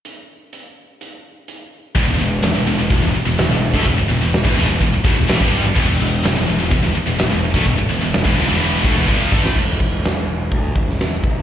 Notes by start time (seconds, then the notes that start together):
0.05 closed hi-hat
0.53 closed hi-hat
1.01 closed hi-hat
1.48 closed hi-hat
1.95 E1 E2 B2, kick, open hi-hat
2.07 E1 E2 B2
2.19 E1 E2 B2, open hi-hat
2.42 E1 E2 B2, snare, open hi-hat
2.55 E1 E2 B2
2.66 E1 E2 B2, open hi-hat
2.78 E1 E2 B2
2.90 E1 E2 B2, kick, open hi-hat
3.02 E1 E2 B2
3.14 muted distorted electric guitar stroke, muted picked electric bass stroke, open hi-hat
3.26 E1 E2 B2
3.38 E1 E2 B2, snare, open hi-hat
3.51 E1 E2 B2
3.62 open hi-hat
3.74 D2 D3 A3, kick
3.85 E1 E2 B2, kick, open hi-hat
3.98 muted distorted electric guitar stroke, muted picked electric bass stroke
4.09 E1 E2 B2, open hi-hat
4.21 E1 E2 B2
4.33 snare, open hi-hat
4.44 E1 E2 B2, kick
4.56 A1 A2 E3, open hi-hat
4.68 E1 E2 B2
4.80 E1 E2 B2, kick, open hi-hat
4.93 muted distorted electric guitar stroke, muted picked electric bass stroke
5.04 E1 E2 B2, kick, open hi-hat
5.15 E1 E2 B2
5.27 A1 A2 E3, snare, open hi-hat
5.40 G1 G2 D3 G3, kick
5.53 open hi-hat
5.64 muted distorted electric guitar stroke, muted picked electric bass stroke
5.76 E1 E2 B2, kick, crash
5.88 E1 E2 B2
6.00 E1 E2 B2, open hi-hat
6.24 E1 E2 B2, snare, open hi-hat
6.36 E1 E2 B2
6.47 E1 E2 B2, open hi-hat
6.60 E1 E2 B2
6.71 E1 E2 B2, kick, open hi-hat
6.83 E1 E2 B2
6.95 muted distorted electric guitar stroke, muted picked electric bass stroke, open hi-hat
7.07 E1 E2 B2
7.19 E1 E2 B2, snare, open hi-hat
7.30 E1 E2 B2
7.42 open hi-hat
7.54 D2 D3 A3, kick
7.65 E1 E2 B2, kick, open hi-hat
7.78 muted distorted electric guitar stroke, muted picked electric bass stroke
7.89 E1 E2 B2, open hi-hat
8.01 E1 E2 B2
8.13 snare, open hi-hat
8.24 E1 E2 B2, kick
8.36 G1 G2 D3, open hi-hat
8.48 E1 E2 B2 E3
8.61 open hi-hat
8.84 D2 D3 A3, kick, open hi-hat
8.96 E1 E2 B2
9.08 G1 G2 D3 G3, kick
9.32 A1 A2 E3 A3, kick
9.46 snare
9.56 E1, kick, crash
9.80 E1, kick
10.04 E1, snare, open hi-hat
10.17 snare
10.28 E1
10.52 D2, kick, open hi-hat
10.76 E1, kick
10.89 snare
10.99 E1, snare, open hi-hat
11.24 G1, kick